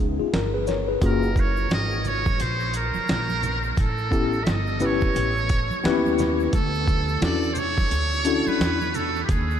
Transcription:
Already playing: upright bass C#2, tine electric piano B3 C#4 D#4
0.19 tine electric piano F4 G#4, muted upright bass stroke
0.33 upright bass G1, tine electric piano A#4, snare, closed hi-hat
0.54 tine electric piano G#4 B4
0.67 tine electric piano A#4 C#5, snare, shaker
0.88 tine electric piano G#4 B4
1.01 upright bass F#1, tine electric piano A#3 C#4 F4 F#4 G#4, muted trumpet A#4, kick, closed hi-hat, shaker
1.23 shaker
1.36 muted trumpet C#5, kick, high conga, shaker
1.57 shaker
1.70 upright bass G#1, muted trumpet D#5, snare, closed hi-hat, high conga, shaker
1.91 shaker
2.05 muted trumpet C#5, low conga, shaker
2.26 kick, high conga, shaker
2.39 upright bass A#1, muted trumpet C5, closed hi-hat, shaker
2.60 shaker
2.74 muted trumpet A#4, closed hi-hat, shaker
2.94 muted upright bass stroke, high conga, shaker
3.08 upright bass A#1, snare, closed hi-hat, shaker
3.29 high conga, shaker
3.43 low conga, shaker
3.63 shaker
3.77 upright bass A1, muted trumpet A4, kick, closed hi-hat, shaker
3.98 shaker
4.11 tine electric piano B3 C#4 E4 G4 A4, kick, high conga, shaker
4.33 shaker
4.44 upright bass G1, muted trumpet E5, snare, closed hi-hat, high conga, shaker
4.50 muted trumpet D#5
4.67 shaker
4.80 tine electric piano B3 C#4 E4 G4 B4, low conga, shaker
4.85 muted trumpet C#5
5.01 kick, high conga, shaker
5.15 upright bass A1, closed hi-hat, shaker
5.37 shaker
5.49 kick, closed hi-hat, shaker
5.71 muted upright bass stroke, high conga, shaker
5.84 upright bass D#2, tine electric piano B3 C#4 E4 G4 B4, snare, closed hi-hat, shaker
6.06 high conga, shaker
6.19 snare, low conga, shaker
6.40 shaker
6.53 upright bass D2, muted trumpet A4, kick, closed hi-hat, shaker
6.74 shaker
6.88 kick, high conga, shaker
7.08 shaker
7.21 upright bass E2, tine electric piano C#4 D4 E4 F#4 A4, muted trumpet D5, snare, closed hi-hat, high conga, shaker
7.43 shaker
7.53 muted trumpet C5, low conga, shaker
7.58 muted trumpet C#5
7.78 kick, high conga, shaker
7.91 upright bass D2, closed hi-hat, shaker
8.13 shaker
8.25 tine electric piano C#4 D4 E4 F#4, closed hi-hat, shaker
8.26 tine electric piano A4, shaker
8.47 muted trumpet B4, muted upright bass stroke, high conga, shaker
8.60 upright bass E2, snare, closed hi-hat, shaker
8.81 high conga, shaker
8.94 muted trumpet A4, low conga, shaker
9.16 shaker
9.24 muted trumpet G4
9.29 upright bass D#2, muted trumpet G#4, kick, closed hi-hat, shaker
9.51 shaker

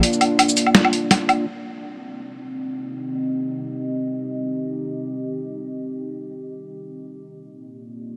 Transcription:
Already playing: analog synth pad A#3 D4 F4 D5
0.03 closed hi-hat
0.13 shaker
0.21 closed hi-hat, low woodblock
0.39 closed hi-hat, low woodblock
0.49 shaker
0.57 closed hi-hat, shaker
0.67 low woodblock
0.75 snare, closed hi-hat
0.85 low woodblock
0.93 closed hi-hat
1.11 snare, closed hi-hat, low woodblock
1.29 closed hi-hat, low woodblock
1.47 analog synth pad C4
1.74 analog synth pad D#4
2.12 analog synth pad G4 D#5
7.26 analog synth pad A#3
7.63 analog synth pad D4 F4
7.71 analog synth pad D5

